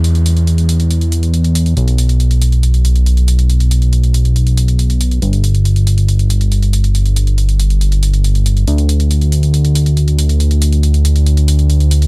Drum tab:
HH |xxxxxxxxxxxxxxxx|xxxxxxxxxxxxxxxx|xxxxxxxxxxxxxxxx|xxxxxxxxxxxxxxxx|

HH |xxxxxxxxxxxxxxxx|xxxxxxxxxxxxxxxx|xxxxxxxxxxxxxxxx|